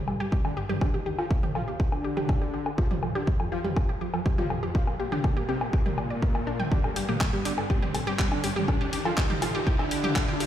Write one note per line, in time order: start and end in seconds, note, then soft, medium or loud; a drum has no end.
0.00 riser medium
0.08 0.15 G2 medium
0.08 0.15 G3 medium
0.08 0.16 A4 medium
0.08 low woodblock soft
0.20 0.27 G2 medium
0.20 0.27 G3 medium
0.20 0.28 G4 loud
0.32 0.39 G2 medium
0.32 0.39 G3 medium
0.32 0.40 G4 loud
0.32 kick loud
0.45 0.52 D3 medium
0.45 0.52 D4 medium
0.45 0.53 A4 medium
0.45 low woodblock medium
0.57 0.64 G2 medium
0.57 0.64 G3 medium
0.57 0.65 G4 loud
0.69 0.76 G2 medium
0.69 0.76 G3 medium
0.69 0.77 G4 loud
0.69 mid tom medium
0.81 0.88 D3 medium
0.81 0.88 D4 medium
0.81 0.90 A4 medium
0.81 kick loud
0.81 low woodblock soft
0.94 1.01 D#2 medium
0.94 1.01 D#3 medium
0.94 1.02 G4 loud
1.06 1.13 D#2 medium
1.06 1.13 D#3 medium
1.06 1.14 G4 loud
1.19 1.25 F3 medium
1.19 1.25 F4 medium
1.19 1.26 A4 medium
1.19 low woodblock soft
1.31 1.38 D#2 medium
1.31 1.38 D#3 medium
1.31 1.39 G4 loud
1.31 kick loud
1.43 1.50 D#2 medium
1.43 1.50 D#3 medium
1.43 1.51 G4 loud
1.43 mid tom medium
1.55 1.62 F3 medium
1.55 1.62 F4 medium
1.55 1.63 A4 medium
1.55 low woodblock soft
1.68 1.74 D#2 medium
1.68 1.75 D#3 medium
1.68 1.76 G4 loud
1.80 1.87 D#2 medium
1.80 1.87 D#3 medium
1.80 1.88 G4 loud
1.80 kick loud
1.92 2.69 D3 loud
1.92 2.69 D4 loud
1.92 2.00 A4 medium
1.92 low woodblock soft
2.04 2.13 G4 loud
2.17 2.25 G4 loud
2.17 mid tom medium
2.29 2.37 A4 medium
2.29 kick loud
2.29 low woodblock soft
2.42 2.49 G4 loud
2.54 2.62 G4 loud
2.66 2.74 A4 medium
2.66 low woodblock soft
2.78 2.85 F3 medium
2.78 2.85 F4 loud
2.78 2.86 G4 loud
2.78 kick loud
2.91 2.97 F2 medium
2.91 2.97 F3 medium
2.91 2.99 G4 loud
2.91 mid tom medium
3.03 3.10 F2 medium
3.03 3.10 F3 medium
3.03 3.11 A4 medium
3.03 low woodblock medium
3.15 3.22 D3 loud
3.15 3.22 D4 medium
3.15 3.23 G4 loud
3.27 3.34 F2 medium
3.27 3.34 F3 medium
3.27 3.36 G4 loud
3.27 kick loud
3.40 3.47 F2 medium
3.40 3.47 F3 medium
3.40 3.48 A4 medium
3.40 low woodblock soft
3.52 3.59 F3 loud
3.52 3.59 F4 medium
3.52 3.60 G4 loud
3.64 3.71 F2 medium
3.64 3.71 F3 medium
3.64 3.72 G4 loud
3.64 mid tom medium
3.77 3.84 F2 medium
3.77 3.84 F3 medium
3.77 3.85 A4 medium
3.77 kick loud
3.77 low woodblock medium
3.89 3.97 G4 loud
4.01 4.08 F2 medium
4.01 4.08 F3 medium
4.01 4.09 G4 loud
4.14 4.20 F2 medium
4.14 4.20 F3 medium
4.14 4.22 A4 medium
4.14 low woodblock soft
4.26 4.33 F2 medium
4.26 4.33 F3 medium
4.26 4.34 G4 loud
4.26 kick loud
4.38 4.45 F3 loud
4.38 4.45 F4 medium
4.38 4.46 G4 loud
4.38 mid tom medium
4.50 4.57 F2 medium
4.50 4.57 F3 medium
4.50 4.59 A4 medium
4.50 low woodblock medium
4.63 4.70 F2 medium
4.63 4.70 F3 medium
4.63 4.71 G4 loud
4.75 4.82 F3 medium
4.75 4.82 F4 medium
4.75 4.83 G4 loud
4.75 kick loud
4.87 4.94 A#2 medium
4.87 4.94 A#3 medium
4.87 4.95 A4 medium
4.87 low woodblock soft
4.99 5.07 A#2 medium
4.99 5.07 A#3 medium
4.99 5.08 G4 loud
5.12 5.19 D3 medium
5.12 5.19 D4 loud
5.12 5.20 G4 loud
5.12 mid tom medium
5.24 5.31 A#2 medium
5.24 5.31 A#3 medium
5.24 5.32 A4 medium
5.24 kick loud
5.24 low woodblock medium
5.37 5.43 A#2 medium
5.37 5.43 A#3 medium
5.37 5.44 G4 loud
5.49 5.56 C3 medium
5.49 5.56 C4 loud
5.49 5.57 G4 loud
5.61 5.68 A#2 medium
5.61 5.68 A#3 medium
5.61 5.69 A4 medium
5.61 low woodblock medium
5.73 5.80 A#2 medium
5.73 5.80 A#3 medium
5.73 5.81 G4 loud
5.73 kick loud
5.86 6.62 A#2 medium
5.86 6.62 A#3 loud
5.86 5.94 G4 loud
5.86 mid tom medium
5.98 6.03 D5 medium
5.98 low woodblock medium
6.10 6.15 D5 medium
6.22 6.34 A#4 medium
6.22 kick loud
6.35 6.43 D5 medium
6.35 low woodblock medium
6.47 6.55 D4 loud
6.60 6.67 G5 loud
6.60 mid tom medium
6.72 6.79 D3 medium
6.72 6.79 D4 loud
6.72 6.80 G4 loud
6.72 kick loud
6.84 6.91 G2 medium
6.84 6.91 G3 medium
6.84 6.92 A4 medium
6.84 low woodblock medium
6.96 7.03 G2 medium
6.96 7.03 G3 medium
6.96 7.04 G4 loud
6.96 open hi-hat loud
7.09 7.16 A#2 medium
7.09 7.15 A#3 medium
7.09 7.17 G4 loud
7.09 mid tom medium
7.21 7.28 G2 medium
7.21 7.28 G3 medium
7.21 7.29 A4 medium
7.21 kick loud
7.21 clap loud
7.21 low woodblock medium
7.33 7.40 G2 medium
7.33 7.40 G3 medium
7.33 7.41 G4 loud
7.45 7.52 D3 medium
7.45 7.52 D4 medium
7.45 7.54 G4 loud
7.45 open hi-hat medium
7.58 7.65 G2 medium
7.58 7.65 G3 medium
7.58 7.66 A4 medium
7.58 low woodblock medium
7.70 7.77 G2 medium
7.70 7.77 G3 medium
7.70 7.78 G4 loud
7.70 kick loud
7.82 7.90 G4 loud
7.82 mid tom medium
7.94 8.02 G2 medium
7.94 8.02 G3 medium
7.94 8.03 A4 medium
7.94 open hi-hat loud
7.94 low woodblock medium
8.07 8.14 G2 medium
8.07 8.14 G3 medium
8.07 8.15 G4 loud
8.19 8.26 G3 medium
8.19 8.27 G4 loud
8.19 kick loud
8.19 clap medium
8.32 8.38 D3 loud
8.32 8.38 D4 medium
8.32 8.40 A4 medium
8.32 low woodblock medium
8.44 8.51 G2 medium
8.44 8.51 G3 medium
8.44 8.52 G4 loud
8.44 open hi-hat loud
8.56 8.63 G2 medium
8.56 8.63 G3 medium
8.56 8.64 G4 loud
8.56 mid tom loud
8.68 8.75 D3 medium
8.68 8.75 D4 medium
8.68 8.76 A4 medium
8.68 kick loud
8.68 low woodblock medium
8.81 8.88 D#2 medium
8.81 8.88 D#3 medium
8.81 8.89 G4 loud
8.93 9.00 D#2 medium
8.93 9.00 D#3 medium
8.93 9.01 G4 loud
8.93 open hi-hat loud
9.05 9.12 F3 loud
9.05 9.12 F4 medium
9.05 9.13 A4 medium
9.05 low woodblock medium
9.17 9.25 D#2 medium
9.17 9.25 D#3 medium
9.17 9.26 G4 loud
9.17 kick loud
9.17 clap loud
9.30 9.37 D#2 medium
9.30 9.37 D#3 medium
9.30 9.38 G4 loud
9.30 mid tom medium
9.42 9.49 F3 medium
9.42 9.49 F4 loud
9.42 9.50 A4 medium
9.42 open hi-hat medium
9.42 low woodblock medium
9.55 9.61 D#2 medium
9.55 9.61 D#3 medium
9.55 9.63 G4 loud
9.67 9.74 D#2 medium
9.67 9.74 D#3 medium
9.67 9.75 G4 loud
9.67 kick loud
9.79 10.46 D3 loud
9.79 10.46 D4 loud
9.79 9.87 A4 medium
9.79 low woodblock medium
9.91 9.99 G4 loud
9.91 open hi-hat loud
10.04 10.12 G4 loud
10.04 mid tom medium
10.16 10.24 A4 medium
10.16 kick loud
10.16 clap loud
10.16 low woodblock medium
10.28 10.36 G4 loud
10.40 10.46 G4 loud
10.40 open hi-hat medium